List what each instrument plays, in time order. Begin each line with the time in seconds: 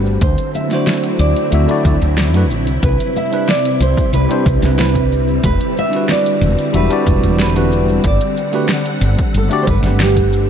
Already playing: fretless electric bass G1, string machine D3 G3 C4 F#5, tine electric piano A3 D4 F#4 G4 B4
0.06 cabasa
0.21 fretless electric bass D2, string machine D3 F#3 C4 E4, nylon-string guitar C5, kick, closed hi-hat, cabasa
0.38 closed hi-hat, cabasa
0.55 nylon-string guitar E5, cabasa
0.68 tine electric piano A3 D4 E4, snare, closed hi-hat, cabasa
0.72 tine electric piano F#4 C5, nylon-string guitar D5
0.87 snare, closed hi-hat, cabasa
1.04 closed hi-hat
1.19 fretless electric bass D2, nylon-string guitar D5, cabasa
1.37 closed hi-hat, cabasa
1.51 fretless electric bass D2, tine electric piano A3 D4 E4 F#4 E5, closed hi-hat, cabasa
1.67 tine electric piano A3 D4 E4 F#4 D5, closed hi-hat
1.84 fretless electric bass D2, tine electric piano A3 D4 E4 F#4 D5, kick, cabasa
2.02 fretless electric bass D2, closed hi-hat, cabasa
2.18 snare, closed hi-hat, cabasa
2.34 fretless electric bass F#2, tine electric piano A3 D4 E4 F#4 B4, closed hi-hat, cabasa
2.50 fretless electric bass A1, cabasa
2.67 fretless electric bass C2, closed hi-hat, cabasa
2.83 fretless electric bass C2, string machine C3 G3 C4, nylon-string guitar B4, kick, closed hi-hat, cabasa
3.00 closed hi-hat, cabasa
3.16 nylon-string guitar E5, cabasa
3.31 tine electric piano G3 C4 D4 E4 B4, closed hi-hat, cabasa
3.49 nylon-string guitar D5, snare, closed hi-hat, cabasa
3.65 closed hi-hat
3.80 fretless electric bass C2, nylon-string guitar C5, cabasa
3.97 kick, closed hi-hat, cabasa
4.13 fretless electric bass C2, nylon-string guitar B4, closed hi-hat, cabasa
4.29 tine electric piano G3 C4 D4 E4 C5, closed hi-hat
4.46 fretless electric bass C2, kick, cabasa
4.59 fretless electric bass C2, tine electric piano G3 C4 D4, snare, closed hi-hat
4.64 tine electric piano E4 B4, cabasa
4.79 nylon-string guitar B4, snare, closed hi-hat, cabasa
4.95 kick, closed hi-hat, cabasa
5.12 cabasa
5.28 cabasa
5.43 fretless electric bass E1, string machine D3, nylon-string guitar B4, kick, closed hi-hat, cabasa
5.61 closed hi-hat, cabasa
5.77 nylon-string guitar E5, cabasa
5.90 tine electric piano G3 D4 E4, closed hi-hat, cabasa
5.95 tine electric piano F#4 B4
6.09 nylon-string guitar D5, snare, closed hi-hat, cabasa
6.26 closed hi-hat
6.41 fretless electric bass E1, cabasa
6.59 closed hi-hat, cabasa
6.72 fretless electric bass E1, tine electric piano G3 D4 E4 F#4 E5, closed hi-hat, cabasa
6.77 nylon-string guitar B4
6.89 tine electric piano G3 D4 E4 F#4 D5, closed hi-hat
7.07 fretless electric bass E1, kick, cabasa
7.23 fretless electric bass E1, closed hi-hat, cabasa
7.39 nylon-string guitar B4, snare, closed hi-hat, cabasa
7.54 tine electric piano G3 D4 E4 F#4 B4, closed hi-hat, cabasa
7.72 cabasa
7.89 cabasa
8.04 fretless electric bass G1, nylon-string guitar D5, string machine F#5, kick, closed hi-hat, cabasa
8.21 closed hi-hat, cabasa
8.37 cabasa
8.52 tine electric piano A3 D4 F#4 G4 B4, closed hi-hat, cabasa
8.69 snare, closed hi-hat, cabasa
8.86 closed hi-hat
9.01 fretless electric bass G1, cabasa
9.19 kick, closed hi-hat, cabasa
9.34 fretless electric bass G1, nylon-string guitar A4, closed hi-hat, cabasa
9.49 tine electric piano A3 D4 F#4 G4 D5, closed hi-hat
9.63 nylon-string guitar C5
9.67 fretless electric bass G1, nylon-string guitar B4, kick, cabasa
9.80 fretless electric bass G1, tine electric piano A3 D4 F#5, snare, closed hi-hat
9.85 tine electric piano G4 B4, cabasa
10.00 nylon-string guitar G4, snare, closed hi-hat, cabasa
10.16 kick, closed hi-hat, cabasa
10.33 cabasa